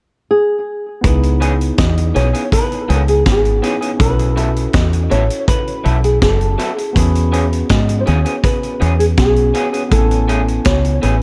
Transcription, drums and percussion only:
1.04 kick, closed hi-hat
1.23 closed hi-hat
1.42 closed hi-hat
1.61 closed hi-hat
1.78 kick, snare, closed hi-hat
1.98 closed hi-hat
2.16 closed hi-hat
2.34 closed hi-hat
2.52 kick, closed hi-hat
2.72 closed hi-hat
2.90 closed hi-hat
3.08 closed hi-hat
3.26 kick, snare, closed hi-hat
3.45 closed hi-hat
3.63 closed hi-hat
3.82 closed hi-hat
4.00 kick, closed hi-hat
4.19 closed hi-hat
4.37 closed hi-hat
4.56 closed hi-hat
4.73 kick, snare, closed hi-hat
4.93 closed hi-hat
5.11 closed hi-hat
5.30 closed hi-hat
5.48 kick, closed hi-hat
5.67 closed hi-hat
5.85 closed hi-hat
6.04 closed hi-hat
6.22 kick, snare, closed hi-hat
6.41 closed hi-hat
6.59 closed hi-hat
6.78 closed hi-hat
6.96 kick, closed hi-hat
7.15 closed hi-hat
7.33 closed hi-hat
7.53 closed hi-hat
7.69 kick, snare, closed hi-hat
7.89 closed hi-hat
8.07 closed hi-hat
8.26 closed hi-hat
8.44 kick, closed hi-hat
8.63 closed hi-hat
8.81 closed hi-hat
9.00 closed hi-hat
9.17 kick, snare, closed hi-hat
9.36 closed hi-hat
9.54 closed hi-hat
9.74 closed hi-hat
9.91 kick, closed hi-hat
10.11 closed hi-hat
10.29 closed hi-hat
10.48 closed hi-hat
10.65 kick, snare, closed hi-hat
10.85 closed hi-hat
11.03 closed hi-hat

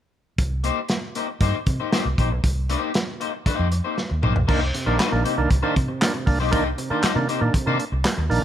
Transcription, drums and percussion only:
0.38 kick, closed hi-hat
0.64 closed hi-hat
0.88 snare, closed hi-hat
1.15 closed hi-hat
1.41 kick, closed hi-hat
1.66 kick, closed hi-hat
1.93 snare, closed hi-hat
2.18 kick, closed hi-hat
2.44 kick, closed hi-hat
2.69 closed hi-hat
2.94 snare, closed hi-hat
3.21 closed hi-hat
3.46 kick, closed hi-hat
3.72 closed hi-hat
3.98 snare
4.23 mid tom
4.36 floor tom
4.49 kick, crash
4.74 closed hi-hat
4.99 snare, clap, closed hi-hat
5.25 closed hi-hat
5.50 kick, closed hi-hat
5.76 kick, closed hi-hat
6.02 snare, clap, closed hi-hat
6.27 kick, open hi-hat
6.53 kick, closed hi-hat
6.78 closed hi-hat
7.03 snare, clap, closed hi-hat
7.29 closed hi-hat
7.54 kick, closed hi-hat
7.80 closed hi-hat
8.05 snare, clap, closed hi-hat
8.31 open hi-hat

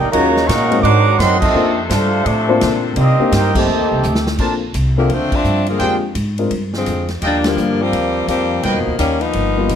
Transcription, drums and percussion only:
0.13 ride
0.37 snare
0.49 snare, hi-hat pedal, ride
0.72 ride
0.85 ride
1.20 snare, hi-hat pedal, ride
1.42 kick, crash
1.90 snare, hi-hat pedal, ride
2.26 ride
2.61 snare, hi-hat pedal, ride
2.96 ride
3.32 snare, hi-hat pedal, ride
3.55 kick, crash
4.03 hi-hat pedal
4.15 snare
4.27 snare
4.38 kick, crash
4.74 hi-hat pedal, ride
5.10 ride
5.32 kick, crash
5.44 hi-hat pedal
5.66 ride
5.79 ride
6.15 hi-hat pedal, ride
6.38 ride
6.51 ride
6.73 snare
6.86 hi-hat pedal, ride
7.08 snare, ride
7.22 ride
7.44 snare, ride
7.57 hi-hat pedal
7.93 ride
8.28 hi-hat pedal, ride
8.63 ride
8.99 hi-hat pedal, ride
9.21 ride
9.33 ride
9.69 hi-hat pedal, ride

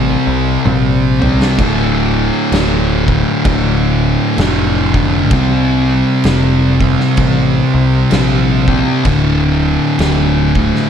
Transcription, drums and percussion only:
0.66 high tom
1.22 mid tom
1.42 snare
1.59 kick, crash
2.52 snare, crash
3.08 kick
3.45 kick, crash
4.38 snare, crash
4.94 kick
5.31 kick, crash
6.24 snare, crash
6.81 kick
7.00 snare
7.17 kick, crash
8.11 snare, crash
8.68 kick
9.05 kick, crash
9.99 snare, crash
10.55 kick
10.75 snare

